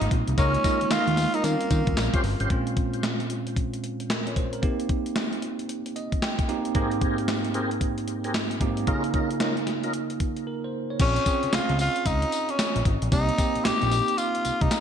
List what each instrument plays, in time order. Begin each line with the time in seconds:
Already playing: tine electric piano G3 A#3 C4 D#4, tenor saxophone D#4
0.01 analog synth bass G#1, closed hi-hat
0.11 analog synth bass A#1, kick, closed hi-hat
0.28 analog synth bass C2, closed hi-hat
0.38 analog synth bass C#2, tine electric piano G#3 A#3 D#4 F4, tenor saxophone C#4, tonewheel organ D#4 F4 A#4, kick, closed hi-hat, tambourine
0.54 closed hi-hat
0.64 tine electric piano G#3 A#3 D#4 F4, tonewheel organ D#4 F4 A#4, kick, closed hi-hat, tambourine
0.81 analog synth bass D#2, closed hi-hat
0.91 analog synth bass D#2, tonewheel organ D#4 F4 A#4, tenor saxophone F4, snare, clap, closed hi-hat, tambourine
1.08 analog synth bass D#2, closed hi-hat
1.17 snare, open hi-hat, tambourine
1.34 tonewheel organ D#4 F4 A#4, tenor saxophone D#4, closed hi-hat
1.44 analog synth bass D#3, tine electric piano G3 C4 C#4 F4, tenor saxophone A#3, closed hi-hat, tambourine
1.61 closed hi-hat
1.71 analog synth bass D#3, kick, closed hi-hat, tambourine
1.87 analog synth bass D#2, kick, closed hi-hat
1.97 analog synth bass A#1, snare, clap, closed hi-hat, tambourine
2.14 tonewheel organ C#4 F4 G4 C5, kick, closed hi-hat
2.24 analog synth bass G1, open hi-hat
2.40 analog synth bass G#1, tonewheel organ C#4 F4 G4 C5, closed hi-hat
2.50 tine electric piano A#2 G#3 C4 C#4 F4, kick, closed hi-hat
2.67 closed hi-hat
2.77 kick, closed hi-hat
2.94 closed hi-hat
3.03 snare, clap, closed hi-hat
3.20 closed hi-hat
3.30 closed hi-hat
3.47 closed hi-hat
3.56 kick, closed hi-hat
3.73 closed hi-hat
3.84 closed hi-hat
4.00 closed hi-hat
4.10 tine electric piano A#4, snare, clap, closed hi-hat
4.27 tine electric piano C#5, closed hi-hat
4.36 tine electric piano C5, kick, closed hi-hat
4.53 tine electric piano A#4, closed hi-hat
4.62 tine electric piano A#3 C4 D#4 G4, kick, closed hi-hat
4.80 closed hi-hat
4.89 kick, closed hi-hat
5.06 closed hi-hat
5.16 snare, clap, closed hi-hat
5.33 closed hi-hat
5.42 closed hi-hat
5.59 closed hi-hat
5.69 closed hi-hat
5.86 closed hi-hat
5.96 tine electric piano D#5, closed hi-hat
6.12 kick, closed hi-hat
6.22 tine electric piano G5, snare, clap, closed hi-hat
6.39 kick, closed hi-hat
6.48 tine electric piano A#3 C4 D#4 G4, closed hi-hat
6.65 closed hi-hat
6.75 tine electric piano G#2 A#3 C4 D#4 G4, tonewheel organ C4 G4 G#4 A#4, kick, closed hi-hat
6.91 closed hi-hat
7.01 tonewheel organ C4 G4 G#4 A#4, kick, closed hi-hat
7.18 closed hi-hat
7.28 snare, clap, closed hi-hat
7.44 closed hi-hat
7.54 tonewheel organ C4 G4 G#4 A#4, closed hi-hat
7.71 closed hi-hat
7.81 kick, closed hi-hat
7.98 closed hi-hat
8.08 closed hi-hat
8.24 tonewheel organ C4 G4 G#4 A#4, closed hi-hat
8.34 snare, clap, closed hi-hat
8.51 closed hi-hat
8.60 tine electric piano G#2 A#3 C4 D#4 G4, kick, closed hi-hat
8.77 closed hi-hat
8.87 tine electric piano C#3 A#3 D#4 F4 G#4, tonewheel organ C#4 D#4 F4 A#4, kick, closed hi-hat
9.04 closed hi-hat
9.14 tonewheel organ C#4 D#4 F4 A#4, kick, closed hi-hat
9.31 closed hi-hat
9.40 tonewheel organ C#4 D#4 F4 A#4, snare, clap, closed hi-hat
9.57 closed hi-hat
9.67 snare, closed hi-hat
9.83 tonewheel organ C#4 D#4 F4 A#4, closed hi-hat
9.93 closed hi-hat
10.10 closed hi-hat
10.20 kick, closed hi-hat
10.37 closed hi-hat
10.47 tine electric piano A#4
10.64 tine electric piano C5
10.90 tine electric piano C#5
10.99 analog synth bass A#1, tine electric piano C4 C#4 F4 G#4, tenor saxophone C#4, kick, closed hi-hat, crash, tambourine
11.16 closed hi-hat
11.26 tine electric piano C4 C#4 F4 G#4, kick, closed hi-hat, tambourine
11.43 analog synth bass C#2, closed hi-hat
11.53 analog synth bass C#2, tenor saxophone F4, snare, clap, closed hi-hat, tambourine
11.69 analog synth bass C#2, closed hi-hat
11.79 tenor saxophone F4, open hi-hat, tambourine
11.96 closed hi-hat
12.06 analog synth bass C#2, tenor saxophone D#4, kick, closed hi-hat, tambourine
12.22 closed hi-hat
12.32 closed hi-hat, tambourine
12.49 tenor saxophone C#4, closed hi-hat
12.59 snare, clap, closed hi-hat, tambourine
12.76 analog synth bass A#1, closed hi-hat
12.85 analog synth bass G#1, kick, closed hi-hat
13.02 analog synth bass A#1, closed hi-hat
13.12 analog synth bass C2, tine electric piano A#3 C4 D#4 G4, tenor saxophone D#4, kick, closed hi-hat, tambourine
13.29 closed hi-hat
13.38 tine electric piano A#3 C4 D#4 G4, kick, closed hi-hat, tambourine
13.55 analog synth bass A#1, closed hi-hat
13.64 analog synth bass A#1, tenor saxophone G4, snare, clap, closed hi-hat, tambourine
13.82 analog synth bass A#1, closed hi-hat
13.92 open hi-hat, tambourine
14.08 closed hi-hat
14.18 tenor saxophone F4, closed hi-hat, tambourine
14.35 closed hi-hat
14.45 analog synth bass C2, closed hi-hat, tambourine
14.61 analog synth bass C2, tenor saxophone D#4, kick, closed hi-hat
14.71 snare, clap, closed hi-hat, tambourine